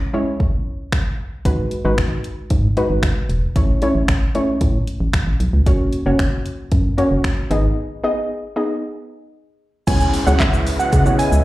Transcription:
0.13 1.02 G#3 medium
0.13 1.02 C#4 medium
0.13 1.02 E4 medium
0.13 1.02 C#5 medium
0.40 kick loud
0.92 finger snap loud
0.92 kick loud
1.45 1.63 G#1 loud
1.45 1.78 G#3 medium
1.45 1.78 D#4 medium
1.45 1.78 F#4 medium
1.45 1.79 B4 loud
1.45 kick loud
1.45 closed hi-hat medium
1.71 closed hi-hat soft
1.85 1.93 G#1 loud
1.85 2.62 G#3 medium
1.85 2.62 D#4 medium
1.85 2.62 F#4 medium
1.85 2.62 B4 loud
1.98 2.15 G#1 medium
1.98 finger snap loud
1.98 kick loud
1.98 closed hi-hat medium
2.24 closed hi-hat soft
2.50 2.68 G#2 loud
2.50 kick loud
2.50 closed hi-hat medium
2.77 3.43 G#3 medium
2.77 3.43 D#4 medium
2.77 3.43 F#4 medium
2.77 3.43 B4 loud
2.77 closed hi-hat soft
2.90 2.99 G#1 medium
3.03 finger snap loud
3.03 kick loud
3.03 closed hi-hat medium
3.29 3.47 E1 medium
3.29 closed hi-hat medium
3.56 3.73 A1 loud
3.56 3.78 A3 medium
3.56 3.78 C#4 medium
3.56 3.78 E4 medium
3.56 3.78 C#5 loud
3.56 kick loud
3.56 closed hi-hat medium
3.82 4.26 A3 medium
3.82 4.26 C#4 medium
3.82 4.26 E4 medium
3.82 4.26 C#5 loud
3.82 closed hi-hat soft
3.95 4.04 A1 loud
4.08 4.26 A1 medium
4.08 finger snap loud
4.08 kick loud
4.08 closed hi-hat medium
4.35 5.23 A3 medium
4.35 5.23 C#4 medium
4.35 5.23 E4 medium
4.35 5.23 C#5 medium
4.35 closed hi-hat soft
4.61 4.78 A2 loud
4.61 kick loud
4.61 closed hi-hat medium
4.87 closed hi-hat soft
5.00 5.09 A1 medium
5.13 finger snap loud
5.13 kick loud
5.13 closed hi-hat medium
5.27 5.36 A1 medium
5.40 5.49 B1 medium
5.40 closed hi-hat medium
5.53 5.62 C#2 medium
5.66 5.84 F#1 loud
5.66 5.99 A#3 medium
5.66 6.00 C#4 medium
5.66 6.00 F#4 medium
5.66 6.00 C#5 loud
5.66 kick loud
5.66 closed hi-hat medium
5.93 closed hi-hat soft
6.06 6.15 F#1 medium
6.06 6.83 A#3 medium
6.06 6.83 C#4 medium
6.06 6.83 F#4 medium
6.06 6.83 C#5 loud
6.19 6.37 F#1 medium
6.19 finger snap loud
6.19 kick loud
6.19 closed hi-hat medium
6.46 closed hi-hat soft
6.72 6.89 F#2 loud
6.72 kick loud
6.72 closed hi-hat medium
6.98 7.51 A#3 medium
6.98 7.51 C#4 medium
6.98 7.51 F#4 medium
6.98 7.51 C#5 loud
6.98 closed hi-hat soft
7.11 7.20 F#1 medium
7.24 finger snap loud
7.24 kick loud
7.24 closed hi-hat medium
7.51 7.68 G#1 loud
7.51 7.95 B3 medium
7.51 7.95 D#4 medium
7.51 7.95 G#4 medium
7.51 7.95 D#5 loud
7.51 closed hi-hat medium
8.04 8.47 B3 medium
8.04 8.47 D#4 medium
8.04 8.48 G#4 medium
8.04 8.48 D#5 loud
8.56 9.44 B3 medium
8.56 9.44 D#4 medium
8.56 9.44 G#4 medium
8.56 9.44 D#5 medium
9.87 10.05 C#2 loud
9.87 11.44 C#3 medium
9.87 11.44 G#3 medium
9.87 10.20 B3 medium
9.87 11.44 B3 medium
9.87 10.21 C#4 medium
9.87 11.44 E4 medium
9.87 10.21 E4 medium
9.87 10.21 G#4 medium
9.87 10.21 C#5 medium
9.87 10.09 G#5 medium
9.87 kick loud
9.87 closed hi-hat medium
9.87 crash loud
9.87 downlifter medium
9.87 shaker medium
10.01 shaker medium
10.14 open hi-hat medium
10.14 shaker medium
10.26 10.36 C#2 loud
10.26 10.93 B3 medium
10.26 10.93 C#4 medium
10.26 10.93 E4 medium
10.26 10.93 G#4 medium
10.26 10.93 C#5 medium
10.26 10.38 F#5 medium
10.26 shaker medium
10.40 10.58 C#2 loud
10.40 10.51 E5 medium
10.40 kick loud
10.40 clap loud
10.40 closed hi-hat medium
10.40 shaker medium
10.54 shaker medium
10.67 open hi-hat medium
10.67 shaker medium
10.79 10.90 F#5 medium
10.79 shaker medium
10.92 11.10 C#3 loud
10.92 11.15 F#5 loud
10.92 kick loud
10.92 closed hi-hat medium
10.92 shaker medium
11.06 11.44 B3 medium
11.06 11.44 C#4 medium
11.06 11.44 E4 medium
11.06 11.44 G#4 medium
11.06 11.44 C#5 medium
11.06 shaker medium
11.19 11.30 G#5 medium
11.19 open hi-hat medium
11.19 shaker medium
11.32 11.41 C#2 medium
11.32 shaker medium

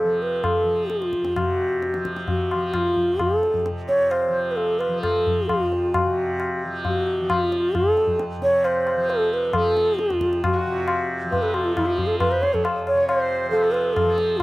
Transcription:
0.00 1.21 F2 soft
0.00 1.35 C3 soft
0.00 0.03 F3 medium
0.00 0.63 F3 soft
0.00 0.24 A4 medium
0.22 0.46 B4 medium
0.44 0.91 A4 medium
0.44 tabla na medium
0.44 tabla ge medium
0.63 1.95 F3 medium
0.90 1.39 F4 medium
0.90 tabla te medium
1.02 tabla te medium
1.13 tabla ke soft
1.22 3.13 F2 soft
1.22 tabla te medium
1.36 3.70 C3 medium
1.36 2.06 F#4 medium
1.36 tabla na medium
1.36 tabla ge medium
1.82 tabla te medium
1.94 2.54 F3 soft
1.94 tabla te medium
2.05 tabla ke medium
2.16 tabla te medium
2.28 2.77 F#4 medium
2.28 tabla tin medium
2.28 tabla ge medium
2.51 4.28 F3 medium
2.51 tabla na medium
2.74 3.23 F4 medium
2.74 tabla na medium
2.74 tabla ge medium
2.96 tabla ge medium
3.13 5.47 F2 medium
3.19 3.67 A4 medium
3.19 tabla na medium
3.19 tabla ge medium
3.43 tabla te medium
3.54 tabla ge medium
3.66 tabla te medium
3.71 6.05 C3 medium
3.88 4.13 C#5 loud
3.88 tabla te medium
4.11 4.53 C5 medium
4.11 tabla na medium
4.28 4.88 F3 soft
4.51 4.58 B4 medium
4.56 4.80 A4 medium
4.56 tabla tin medium
4.79 5.01 B4 medium
4.79 tabla na medium
4.88 6.65 F3 medium
5.02 5.49 A4 medium
5.02 tabla na medium
5.02 tabla ge medium
5.27 tabla ge medium
5.47 7.81 F2 medium
5.47 5.95 F4 medium
5.47 tabla na medium
5.47 tabla ge medium
5.72 tabla te soft
5.94 6.62 F#4 medium
5.94 tabla na medium
5.94 tabla ge medium
6.06 8.38 C3 medium
6.40 tabla na medium
6.65 7.21 F3 medium
6.85 7.31 F#4 medium
6.85 tabla tin medium
6.85 tabla ge medium
7.21 8.96 F3 medium
7.30 7.42 F#4 medium
7.30 tabla na medium
7.30 tabla ge medium
7.42 7.77 F4 medium
7.52 tabla te medium
7.75 8.20 A4 medium
7.75 tabla na medium
7.75 tabla ge medium
7.81 10.09 F2 medium
7.97 tabla te soft
8.08 tabla ge soft
8.19 tabla te medium
8.38 10.65 C3 medium
8.38 tabla te medium
8.43 8.66 C#5 loud
8.64 9.12 C5 medium
8.64 tabla na medium
8.87 tabla na medium
8.96 9.52 F3 medium
9.10 9.35 A4 medium
9.10 tabla tin medium
9.33 9.57 B4 medium
9.52 11.24 F3 medium
9.52 10.01 A4 medium
9.52 tabla na medium
9.52 tabla ge medium
9.77 tabla te medium
9.99 10.44 F4 medium
9.99 tabla te medium
10.09 12.36 F2 medium
10.09 tabla te medium
10.21 tabla ke medium
10.33 tabla te medium
10.44 11.07 F#4 medium
10.44 tabla na loud
10.44 tabla ge medium
10.53 11.16 F#4 medium
10.66 12.94 C3 medium
10.88 tabla na medium
11.24 11.80 F3 medium
11.31 11.44 B4 medium
11.31 tabla tin medium
11.31 tabla ge medium
11.42 11.51 A4 medium
11.42 11.56 B4 medium
11.51 11.66 F#4 medium
11.51 11.55 A4 medium
11.51 11.88 A4 medium
11.51 tabla na medium
11.65 11.75 F4 medium
11.76 11.87 E4 medium
11.76 tabla na medium
11.76 tabla ge medium
11.80 13.49 F3 medium
11.86 11.99 E4 medium
11.86 11.99 F4 medium
11.97 12.22 F4 medium
11.97 12.08 F#4 medium
11.97 tabla ge medium
12.07 12.18 A4 medium
12.19 12.32 A4 medium
12.19 12.33 B4 medium
12.19 tabla na medium
12.19 tabla ge medium
12.30 12.44 B4 medium
12.30 12.43 C5 medium
12.37 14.43 F2 medium
12.42 12.55 C5 medium
12.42 12.55 C#5 loud
12.42 tabla te medium
12.53 12.65 A4 medium
12.53 12.66 C#5 medium
12.53 tabla ge medium
12.65 12.76 A4 medium
12.65 tabla na medium
12.87 13.07 C#5 loud
12.87 tabla na medium
12.94 14.43 C3 medium
12.94 13.22 C#5 medium
13.08 13.49 C5 medium
13.08 tabla na medium
13.21 13.64 C5 medium
13.49 14.05 F3 medium
13.49 13.73 A4 medium
13.53 tabla tin medium
13.63 14.06 A4 medium
13.72 13.95 B4 medium
13.72 tabla na medium
13.94 14.39 A4 medium
13.94 tabla na medium
13.94 tabla ge medium
14.05 14.43 F3 medium
14.05 14.43 A4 medium
14.18 tabla te medium
14.37 14.43 F4 medium

